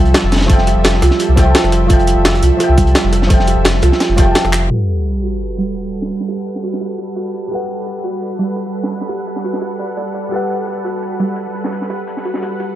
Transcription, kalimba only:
Already playing: G3
0.67 G4
1.02 F4
1.20 G4
1.38 G4
1.55 F4
1.90 G4
2.42 F4
2.78 G3
3.48 G4
3.83 F4
4.00 G4
4.18 G4
4.35 G5
4.53 G4
4.71 G4
5.23 F#4
5.58 G3
6.28 G4
6.64 F#4
6.81 G4
6.99 G4
7.16 F#4
7.51 G4
8.04 F#4
8.39 G3
9.09 G4
9.44 F#4
9.62 G4
9.79 D5
9.97 D5
10.15 D5
10.32 G4
10.85 F#4
11.20 G3
11.90 G4
12.25 F#4
12.43 G4
12.60 G4

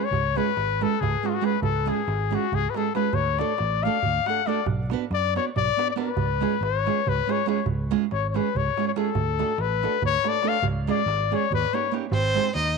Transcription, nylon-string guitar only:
0.35 G#3 C#4 F4 G#4
0.81 G#3 C#4 F4 G#4
1.23 G#3 C#4 F4 G#4
1.41 G#3 C#4 F4 G#4
1.86 G#3 C#4 F4 G#4
2.31 G#3 C#4 F4 G#4
2.75 G#3 C#4 F4 G#4
2.95 G#3 C#4 F4 G#4
3.39 A3 D4 F#4 A4
3.85 A3 D4 F#4 A4
4.27 A3 D4 F#4 A4
4.47 A3 D4 F#4 A4
4.91 B3 D4 F#4 B4
5.35 B3 D4 F#4 B4
5.77 B3 D4 F#4 B4
5.96 B3 D4 F#4 B4
6.40 G#3 C#4 F4 G#4
6.86 G#3 C#4 F4 G#4
7.27 G#3 C#4 F4 G#4
7.46 G#3 C#4 F4 G#4
7.91 G#3 C#4 F4 G#4
8.34 G#3 C#4 F4 G#4
8.77 G#3 C#4 F4 G#4
8.96 G#3 C#4 F4 G#4
9.39 A3 D4 F#4 A4
9.82 A3 D4 F#4 A4
10.25 A3 D4 F#4 A4
10.43 A3 D4 F#4 A4
10.87 G#3 C#4 F4 G#4
11.31 G#3 C#4 F4 G#4
11.73 A#3 C#4 D#4 G4
11.92 A#3 C#4 D#4 G4
12.34 G#3 C4 D#4 G#4

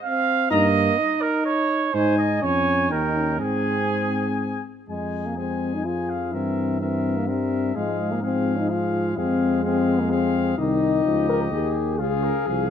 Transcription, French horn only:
0.50 D#4
1.95 D#4
2.42 C#4
2.90 D#4
3.16 C#4
3.41 C4
4.89 G#3
5.26 A#3
5.37 C4
5.74 D#4
5.85 F4
6.33 C4
6.80 C4
7.17 A#3
7.28 C4
7.75 G#3
8.11 A#3
8.22 C4
8.58 D#4
8.70 F4
9.17 C4
9.64 C4
10.00 A#3
10.10 C4
10.58 D#4
11.29 A#4
11.52 G#4
11.99 G#4

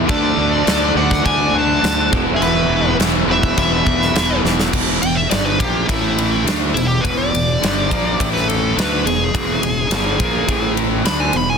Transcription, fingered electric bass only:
0.09 D2
0.37 D2
0.67 D2
0.95 D2
1.25 D2
1.53 D2
1.83 D2
2.12 E1
2.40 E1
2.70 E1
2.99 E1
3.28 E1
3.58 E1
3.86 E1
4.14 E1
4.44 E1
4.74 E1
5.03 E1
5.32 G1
5.60 A#1
5.88 A1
6.45 D2
6.74 E1
7.04 E1
7.34 E1
7.63 G1
7.92 A#1
8.20 A1
8.77 D2
9.05 E1
9.35 E1
9.62 E1
9.90 G1
10.20 A#1
10.48 A1
11.04 D2
11.33 E1

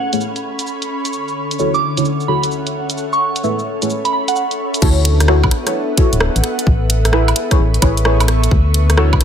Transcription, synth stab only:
0.13 A3 E4 G#4 B4 C#5
1.59 D3 E4 F#4 A4 C#5
1.97 D3 E4 F#4 A4 C#5
2.28 D3 E4 F#4 A4 C#5
3.44 A3 E4 G#4 B4 E5
3.82 A3 E4 G#4 B4 C#5
4.82 E4 F#4 A4 C#5
5.28 E4 F#4 A4 C#5
5.67 E4 F#4 A4 C#5
5.97 E4 F#4 A4 C#5
7.13 E4 G#4 B4 E5
7.51 E4 G#4 B4 C#5
7.82 E4 G#4 B4 C#5
8.05 E4 G#4 B4 C#5
8.97 E4 F#4 A4 C#5

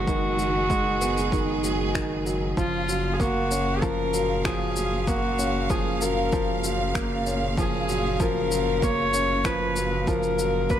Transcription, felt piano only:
Already playing: D#3 F#3 G#3 B3
0.08 D#3
0.39 F#3
0.70 G#3
1.01 B3
1.33 D#3
1.64 F#3
1.95 D#3
2.26 F#3
2.57 F3
2.89 F#3
3.20 A#3
3.51 C#4
3.83 F3
4.14 F#3
4.45 F3
4.77 F#3
5.08 A#3
5.39 C#4
5.70 F3
6.02 F#3
6.33 F3
6.64 F#3
6.95 A#3
7.27 C#4
7.58 F3
7.89 F#3
8.20 F3
8.51 F#3
8.83 A#3
9.14 C#4
9.45 F3
9.76 F#3
10.08 F3
10.39 F#3
10.70 A#3

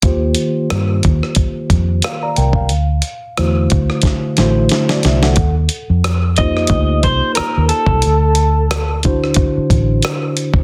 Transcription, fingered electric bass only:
0.04 D#2
0.71 G2
1.06 D#2
1.71 F2
2.38 C2
2.71 D2
3.39 E2
3.73 D2
4.39 A1
5.05 C2
5.38 D#2
5.90 F2
6.71 D2
7.04 C2
7.39 muted fingered electric bass stroke
7.57 D#2
7.88 C2
8.06 D2
9.57 muted fingered electric bass stroke
9.71 A1

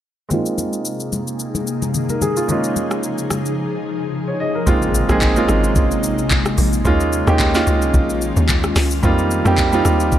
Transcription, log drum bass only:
4.67 A#1
5.09 A#1
5.49 G#1
6.04 A#1
6.58 A#1
6.85 D#2
7.27 D#2
7.67 C#2
7.94 A#1
8.37 D#2
8.76 C#2
9.03 F2
9.46 F2
9.85 D#2

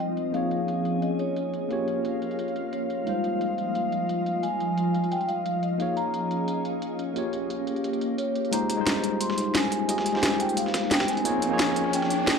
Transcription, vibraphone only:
0.00 D#5
0.34 F5
1.02 D#5
1.19 C#5
2.73 C#5
3.07 F5
3.75 F5
4.43 G#5
5.11 G5
5.28 F5
5.46 F5
5.63 D#5
5.80 F5
5.97 A#5
8.18 C#5
8.52 A#5
9.20 C6
9.55 G#5
9.89 G#5
10.40 G5
10.57 F5
10.91 G5
11.08 G#5
11.94 G5

